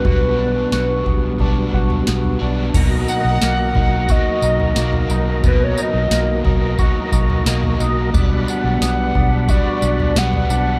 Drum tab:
CC |----------------|x---------------|----------------|----------------|
TB |----------------|x-x-x---x-x-x-x-|x-x-x---x-x-x-x-|x-x-x---x-x-x-x-|
SD |----o-------o---|----o-------o---|----o-------o---|----o-------o---|
FT |o-----o-o--o-o--|o-----o-o--o-o--|o-----o-o--o-o--|o-----o-o--o-o--|
BD |o-----o-o-o-----|o-----o-o-------|o-----o-o-o-----|o-----o-o-------|